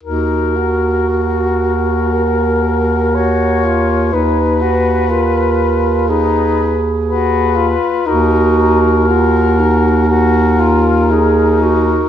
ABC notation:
X:1
M:4/4
L:1/16
Q:1/4=59
K:Ebm
V:1 name="Soprano saxophone"
B4 B8 d4 | c8 c3 z c4 | B2 B6 B8 |]
V:2 name="Clarinet"
G8 B2 B6 | c4 B4 A6- A z | G4 F2 E6 A2 G2 |]
V:3 name="Tenor saxophone"
E2 G8- G2 G2 F2 | E2 G2 F4 E3 z G2 F2 | E4 G4 G2 F2 E4 |]
V:4 name="Bass clarinet" clef=bass
E,,16 | E,,12- E,,3 z | E,,16 |]